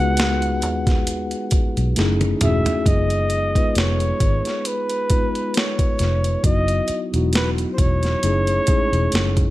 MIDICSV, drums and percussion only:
0, 0, Header, 1, 2, 480
1, 0, Start_track
1, 0, Tempo, 895522
1, 1531, Time_signature, 4, 2, 24, 8
1, 5094, End_track
2, 0, Start_track
2, 0, Title_t, "Drums"
2, 91, Note_on_c, 9, 42, 78
2, 105, Note_on_c, 9, 38, 108
2, 145, Note_off_c, 9, 42, 0
2, 159, Note_off_c, 9, 38, 0
2, 225, Note_on_c, 9, 42, 36
2, 279, Note_off_c, 9, 42, 0
2, 333, Note_on_c, 9, 42, 77
2, 387, Note_off_c, 9, 42, 0
2, 465, Note_on_c, 9, 36, 96
2, 465, Note_on_c, 9, 42, 48
2, 476, Note_on_c, 9, 38, 33
2, 519, Note_off_c, 9, 36, 0
2, 519, Note_off_c, 9, 42, 0
2, 530, Note_off_c, 9, 38, 0
2, 573, Note_on_c, 9, 42, 93
2, 627, Note_off_c, 9, 42, 0
2, 702, Note_on_c, 9, 42, 37
2, 756, Note_off_c, 9, 42, 0
2, 809, Note_on_c, 9, 42, 76
2, 815, Note_on_c, 9, 36, 93
2, 863, Note_off_c, 9, 42, 0
2, 869, Note_off_c, 9, 36, 0
2, 949, Note_on_c, 9, 42, 42
2, 1003, Note_off_c, 9, 42, 0
2, 1052, Note_on_c, 9, 42, 73
2, 1066, Note_on_c, 9, 38, 58
2, 1105, Note_off_c, 9, 42, 0
2, 1120, Note_off_c, 9, 38, 0
2, 1183, Note_on_c, 9, 42, 35
2, 1185, Note_on_c, 9, 48, 67
2, 1237, Note_off_c, 9, 42, 0
2, 1238, Note_off_c, 9, 48, 0
2, 1291, Note_on_c, 9, 42, 80
2, 1292, Note_on_c, 9, 45, 96
2, 1344, Note_off_c, 9, 42, 0
2, 1346, Note_off_c, 9, 45, 0
2, 1426, Note_on_c, 9, 43, 103
2, 1427, Note_on_c, 9, 42, 52
2, 1479, Note_off_c, 9, 43, 0
2, 1480, Note_off_c, 9, 42, 0
2, 1532, Note_on_c, 9, 36, 99
2, 1534, Note_on_c, 9, 42, 69
2, 1585, Note_off_c, 9, 36, 0
2, 1588, Note_off_c, 9, 42, 0
2, 1663, Note_on_c, 9, 42, 44
2, 1716, Note_off_c, 9, 42, 0
2, 1768, Note_on_c, 9, 42, 58
2, 1822, Note_off_c, 9, 42, 0
2, 1905, Note_on_c, 9, 36, 80
2, 1907, Note_on_c, 9, 42, 45
2, 1959, Note_off_c, 9, 36, 0
2, 1961, Note_off_c, 9, 42, 0
2, 2012, Note_on_c, 9, 42, 67
2, 2026, Note_on_c, 9, 38, 98
2, 2066, Note_off_c, 9, 42, 0
2, 2080, Note_off_c, 9, 38, 0
2, 2145, Note_on_c, 9, 42, 43
2, 2199, Note_off_c, 9, 42, 0
2, 2253, Note_on_c, 9, 36, 80
2, 2253, Note_on_c, 9, 42, 62
2, 2307, Note_off_c, 9, 36, 0
2, 2307, Note_off_c, 9, 42, 0
2, 2386, Note_on_c, 9, 42, 43
2, 2398, Note_on_c, 9, 38, 30
2, 2440, Note_off_c, 9, 42, 0
2, 2451, Note_off_c, 9, 38, 0
2, 2493, Note_on_c, 9, 42, 84
2, 2546, Note_off_c, 9, 42, 0
2, 2624, Note_on_c, 9, 42, 44
2, 2677, Note_off_c, 9, 42, 0
2, 2732, Note_on_c, 9, 42, 70
2, 2735, Note_on_c, 9, 36, 83
2, 2785, Note_off_c, 9, 42, 0
2, 2788, Note_off_c, 9, 36, 0
2, 2869, Note_on_c, 9, 42, 37
2, 2923, Note_off_c, 9, 42, 0
2, 2971, Note_on_c, 9, 42, 67
2, 2988, Note_on_c, 9, 38, 97
2, 3024, Note_off_c, 9, 42, 0
2, 3041, Note_off_c, 9, 38, 0
2, 3103, Note_on_c, 9, 36, 86
2, 3103, Note_on_c, 9, 42, 47
2, 3156, Note_off_c, 9, 36, 0
2, 3157, Note_off_c, 9, 42, 0
2, 3211, Note_on_c, 9, 42, 65
2, 3223, Note_on_c, 9, 38, 35
2, 3265, Note_off_c, 9, 42, 0
2, 3277, Note_off_c, 9, 38, 0
2, 3346, Note_on_c, 9, 42, 49
2, 3400, Note_off_c, 9, 42, 0
2, 3450, Note_on_c, 9, 36, 98
2, 3451, Note_on_c, 9, 42, 75
2, 3504, Note_off_c, 9, 36, 0
2, 3505, Note_off_c, 9, 42, 0
2, 3581, Note_on_c, 9, 42, 47
2, 3635, Note_off_c, 9, 42, 0
2, 3686, Note_on_c, 9, 42, 59
2, 3740, Note_off_c, 9, 42, 0
2, 3826, Note_on_c, 9, 42, 48
2, 3879, Note_off_c, 9, 42, 0
2, 3928, Note_on_c, 9, 42, 70
2, 3942, Note_on_c, 9, 38, 109
2, 3981, Note_off_c, 9, 42, 0
2, 3995, Note_off_c, 9, 38, 0
2, 4065, Note_on_c, 9, 42, 43
2, 4118, Note_off_c, 9, 42, 0
2, 4172, Note_on_c, 9, 36, 83
2, 4172, Note_on_c, 9, 42, 65
2, 4225, Note_off_c, 9, 36, 0
2, 4226, Note_off_c, 9, 42, 0
2, 4303, Note_on_c, 9, 42, 43
2, 4314, Note_on_c, 9, 38, 31
2, 4357, Note_off_c, 9, 42, 0
2, 4368, Note_off_c, 9, 38, 0
2, 4411, Note_on_c, 9, 42, 87
2, 4464, Note_off_c, 9, 42, 0
2, 4541, Note_on_c, 9, 42, 45
2, 4595, Note_off_c, 9, 42, 0
2, 4647, Note_on_c, 9, 42, 73
2, 4652, Note_on_c, 9, 36, 92
2, 4700, Note_off_c, 9, 42, 0
2, 4706, Note_off_c, 9, 36, 0
2, 4787, Note_on_c, 9, 42, 36
2, 4841, Note_off_c, 9, 42, 0
2, 4888, Note_on_c, 9, 42, 68
2, 4905, Note_on_c, 9, 38, 94
2, 4942, Note_off_c, 9, 42, 0
2, 4959, Note_off_c, 9, 38, 0
2, 5021, Note_on_c, 9, 36, 85
2, 5021, Note_on_c, 9, 42, 50
2, 5075, Note_off_c, 9, 36, 0
2, 5075, Note_off_c, 9, 42, 0
2, 5094, End_track
0, 0, End_of_file